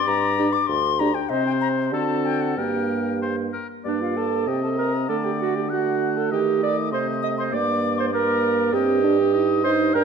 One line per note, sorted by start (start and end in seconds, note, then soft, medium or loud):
0.00 1.03 D5 loud
0.07 0.59 G2 medium
0.07 0.54 A#5 loud
0.38 0.50 D4 medium
0.38 0.49 G4 medium
0.53 0.69 D6 medium
0.67 1.20 D2 medium
0.67 1.01 C6 loud
1.00 1.11 D4 medium
1.00 1.11 G4 medium
1.00 1.16 A#5 medium
1.15 1.31 G5 medium
1.29 1.94 C3 medium
1.29 1.90 C4 medium
1.29 1.95 G4 medium
1.29 1.89 C5 medium
1.29 1.46 D#5 medium
1.47 1.53 G5 medium
1.61 1.68 A#5 medium
1.93 2.56 D3 medium
1.93 2.56 C4 medium
1.93 2.57 F#4 medium
1.93 2.60 A4 medium
1.93 2.27 A5 medium
2.26 2.43 G5 medium
2.42 2.57 F#5 medium
2.57 3.51 G2 medium
2.57 3.52 A#3 medium
2.57 3.52 G4 medium
2.57 3.16 A#4 medium
2.57 3.20 G5 medium
3.22 3.36 C5 medium
3.53 3.68 A#4 medium
3.84 4.43 G2 medium
3.84 4.49 A#3 soft
3.84 4.03 D4 medium
3.84 3.90 D5 medium
3.84 4.49 D5 soft
4.00 4.18 F4 medium
4.00 4.19 F5 medium
4.16 4.49 A4 medium
4.16 4.50 A5 medium
4.47 5.10 C3 medium
4.47 5.09 C4 soft
4.47 4.63 G4 medium
4.47 5.08 D#5 soft
4.47 4.62 G5 medium
4.63 4.78 A4 medium
4.63 4.69 A5 soft
4.77 4.92 A#4 medium
4.77 5.10 A#5 medium
5.09 6.31 D3 medium
5.09 5.69 A3 soft
5.09 5.16 A4 medium
5.09 5.71 D5 medium
5.09 5.26 A5 medium
5.24 5.32 G4 medium
5.24 5.41 G5 medium
5.40 5.55 F#4 medium
5.40 5.57 F#5 medium
5.55 5.63 G4 medium
5.55 5.73 G5 medium
5.70 7.54 A3 soft
5.70 6.19 F#4 medium
5.70 6.33 F#5 soft
5.70 6.18 F#5 medium
6.17 6.32 A4 medium
6.17 6.32 A5 medium
6.31 6.94 D#3 medium
6.31 6.62 G4 medium
6.31 6.91 D#5 medium
6.31 6.40 G5 medium
6.63 6.77 D5 medium
6.63 6.92 D6 medium
6.92 7.52 C3 medium
6.92 7.07 C5 medium
6.92 7.54 D#5 medium
6.92 6.99 C6 medium
7.22 7.30 D#5 medium
7.22 7.28 D#6 medium
7.38 7.56 C5 medium
7.38 7.44 C6 medium
7.52 8.71 G2 medium
7.52 8.13 A#3 medium
7.52 8.12 D5 medium
7.52 7.99 D5 medium
7.52 8.00 D6 medium
7.98 8.06 C5 medium
7.98 8.13 C6 medium
8.13 8.75 A#3 medium
8.13 8.75 A#4 medium
8.13 8.75 D5 medium
8.13 8.73 A#5 medium
8.73 9.92 G2 medium
8.73 9.03 C4 medium
8.73 9.64 G4 loud
8.73 9.33 D#5 medium
8.73 9.63 G5 medium
9.04 9.17 D4 medium
9.34 9.64 D#4 medium
9.34 9.96 D#5 medium
9.63 9.97 D#4 medium
9.63 9.94 C5 loud
9.63 9.70 C6 medium
9.94 10.04 G2 medium
9.94 10.04 D4 medium
9.94 10.04 A#4 loud
9.94 10.04 G5 medium
9.94 10.04 A#5 medium